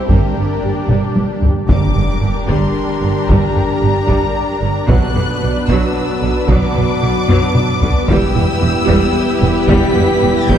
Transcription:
0.00 1.68 G3 medium
0.00 1.45 G4 medium
0.00 1.68 G4 medium
0.08 0.17 G1 medium
0.08 0.17 G2 medium
0.08 0.34 G3 medium
0.08 1.46 A#3 medium
0.08 1.46 D4 medium
0.08 1.68 D4 medium
0.08 1.39 A#4 medium
0.08 1.67 D5 medium
0.08 taiko medium
0.36 0.44 G1 soft
0.36 0.44 G2 soft
0.36 0.44 G3 soft
0.62 0.71 G1 soft
0.62 0.70 G2 soft
0.62 0.71 G3 soft
0.62 0.72 D4 medium
0.62 0.72 G4 medium
0.88 0.97 G1 medium
0.88 0.96 G2 medium
0.88 1.14 G3 medium
0.88 taiko mid medium
1.15 1.24 G1 soft
1.15 1.23 G2 soft
1.15 1.24 G3 soft
1.15 taiko high medium
1.41 1.50 G1 soft
1.41 1.49 G2 soft
1.41 1.51 G3 soft
1.41 1.53 D4 medium
1.41 1.52 G4 medium
1.41 taiko low medium
1.68 1.77 G1 medium
1.68 1.76 G2 medium
1.68 1.94 G3 medium
1.68 4.85 G3 medium
1.68 4.85 D4 medium
1.68 4.85 G4 medium
1.68 4.85 A#4 medium
1.68 8.05 D5 medium
1.68 2.44 D6 loud
1.68 taiko loud
1.68 impact medium
1.96 2.04 G1 medium
1.96 2.04 G2 medium
1.96 2.04 D3 medium
1.96 taiko low-mid soft
2.22 2.31 G1 medium
2.22 2.30 G2 medium
2.22 2.30 D3 medium
2.48 2.57 G1 medium
2.48 2.56 G2 medium
2.48 2.73 G3 medium
2.48 3.27 C6 medium
2.48 taiko medium
3.01 3.10 G1 medium
3.01 3.10 G2 soft
3.01 3.09 D3 medium
3.28 3.37 G1 medium
3.28 3.38 G2 medium
3.28 3.53 G3 medium
3.28 4.88 A#5 loud
3.28 taiko loud
3.56 3.64 G1 soft
3.56 3.64 G2 medium
3.56 3.64 D3 soft
3.56 taiko low-mid soft
3.81 3.90 G1 medium
3.81 3.90 G2 medium
3.81 3.89 D3 medium
4.08 4.17 G1 medium
4.08 4.17 G2 medium
4.08 4.33 G3 medium
4.08 taiko medium
4.61 4.70 G1 medium
4.61 4.69 G2 medium
4.61 4.69 D3 medium
4.87 4.97 B1 medium
4.87 4.96 B2 medium
4.87 5.13 F#3 medium
4.87 8.09 F#3 medium
4.87 8.04 B3 medium
4.87 10.58 B3 medium
4.87 8.04 D4 medium
4.87 8.05 D4 medium
4.87 8.04 F#4 medium
4.87 8.09 B4 medium
4.87 8.05 B4 medium
4.87 5.69 F#6 loud
4.87 taiko loud
5.15 5.23 B1 medium
5.15 5.24 B2 medium
5.15 5.23 D3 medium
5.15 taiko low-mid soft
5.42 5.50 B1 medium
5.42 5.50 B2 medium
5.42 5.50 D3 medium
5.68 5.77 B1 medium
5.68 5.77 B2 medium
5.68 5.93 F#3 loud
5.68 6.49 E6 loud
5.68 taiko medium
6.22 6.30 B1 medium
6.22 6.30 B2 medium
6.22 6.30 D3 medium
6.48 6.57 B1 medium
6.48 6.56 B2 medium
6.48 6.73 F#3 medium
6.48 8.09 D6 loud
6.48 taiko loud
6.75 6.84 B1 medium
6.75 6.83 B2 medium
6.75 6.83 D3 medium
6.75 taiko low-mid medium
7.02 7.10 B1 medium
7.02 7.10 B2 medium
7.02 7.10 D3 medium
7.28 7.37 B1 medium
7.28 7.36 B2 medium
7.28 7.54 F#3 loud
7.28 taiko low-mid medium
7.55 taiko mid medium
7.82 7.91 B1 medium
7.82 7.90 B2 medium
7.82 7.90 D3 medium
7.82 taiko low loud
8.08 8.18 E1 medium
8.08 8.17 E2 loud
8.08 10.58 G3 medium
8.08 8.34 G3 medium
8.08 10.58 B3 loud
8.08 10.58 E4 medium
8.08 10.58 G4 medium
8.08 10.58 B4 medium
8.08 10.58 G5 medium
8.08 9.69 E6 loud
8.08 taiko loud
8.35 8.44 E1 medium
8.35 8.43 E2 medium
8.35 8.44 E3 medium
8.35 taiko low-mid medium
8.61 8.70 E1 medium
8.61 8.70 E2 medium
8.61 8.69 E3 medium
8.88 8.97 E1 medium
8.88 8.96 E2 medium
8.88 9.13 G3 loud
8.88 taiko medium
9.42 9.50 E1 medium
9.42 9.50 E2 medium
9.42 9.50 E3 medium
9.68 9.76 E1 loud
9.68 9.76 E2 loud
9.68 9.93 G3 loud
9.68 10.47 B6 loud
9.68 taiko loud
9.95 10.03 E1 medium
9.95 10.04 E2 medium
9.95 10.04 E3 medium
9.95 taiko low-mid soft
10.22 10.30 E1 medium
10.22 10.30 E2 medium
10.22 10.30 E3 medium
10.49 10.57 E1 loud
10.49 10.57 E2 loud
10.49 10.58 G3 loud
10.49 10.58 G6 loud
10.49 taiko medium

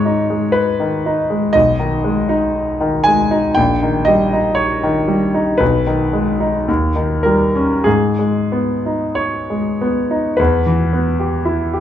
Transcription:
0.00 1.51 G#2 soft
0.00 0.20 G#3 soft
0.00 0.53 C#5 medium
0.00 1.53 D#5 medium
0.06 0.45 D#4 soft
0.30 1.10 G#3 soft
0.52 1.54 B4 medium
0.80 1.20 D#3 soft
1.06 1.46 D#4 soft
1.30 1.55 G#3 soft
1.53 3.53 B1 soft
1.53 3.05 D#5 medium
1.79 2.20 D#3 soft
2.04 2.45 G#3 soft
2.29 3.10 D#4 soft
2.81 3.21 D#3 soft
3.04 3.47 G#3 soft
3.04 3.56 G#5 medium
3.31 3.57 D#4 soft
3.55 5.57 A#1 soft
3.55 4.06 G5 medium
3.82 4.23 D#3 soft
4.05 4.48 G3 soft
4.05 4.57 D#5 medium
4.33 5.14 D#4 soft
4.55 5.59 C#5 medium
4.83 5.24 D#3 soft
5.07 5.50 G3 soft
5.34 5.61 D#4 soft
5.58 6.65 B1 soft
5.58 7.23 B4 medium
5.87 6.30 D#3 soft
6.13 6.57 G#3 soft
6.40 6.68 D#4 soft
6.68 7.82 D#2 soft
6.96 7.42 D#3 soft
7.23 7.73 G3 soft
7.23 7.84 A#4 medium
7.55 7.86 C#4 soft
7.84 10.35 G#2 soft
7.84 9.17 G#4 medium
8.19 8.73 G#3 soft
8.52 9.05 B3 soft
8.86 9.87 D#4 soft
9.15 10.37 C#5 medium
9.50 9.99 G#3 soft
9.81 10.28 B3 soft
10.11 10.39 D#4 soft
10.37 11.80 E2 soft
10.37 11.80 B4 soft
10.66 11.09 E3 soft
10.93 11.36 B3 soft
11.20 11.62 G4 soft
11.45 11.80 E4 soft
11.73 11.80 G4 soft

